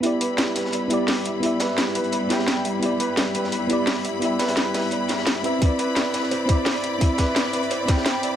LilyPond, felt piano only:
\new Staff \with { instrumentName = "Felt piano" } { \time 4/4 \key g \major \tempo 4 = 172 e'8 b'8 e'8 b'8 d''8 d''8 d''8 e''8 | e'16 r16 b'8 e'8 b'8 d''8 d''16 r16 d''8 e''16 r16 | e'16 r16 b'8 e'8 b'8 d''8 d''16 r8. e''16 r16 | e'16 r16 b'8 e'8 b'8 d''8 d''16 r16 d''8 d''16 r16 |
e'16 r16 b'8 e'8 b'8 c''8 c''16 r16 c''8 d''16 r16 | e'16 r16 b'8 e'8 b'8 c''8 c''16 r16 c''8 d''16 r16 | }